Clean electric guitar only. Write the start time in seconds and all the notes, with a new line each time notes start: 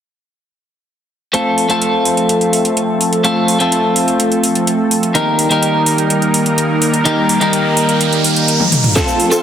1.33 A3 C4 F4 A4
1.69 A3 C4 F4 A4
3.24 A3 C4 F4 A4
3.59 A3 C4 F4 A4
5.14 D#3 A#3 D#4 G4 A#4
5.49 D#3 A#3 D#4 G4 A#4
7.05 D#3 A#3 D#4 G4 A#4
7.40 D#3 A#3 D#4 G4 A#4
8.95 A3 C4 F4 A4
9.30 A3 C4 F4 A4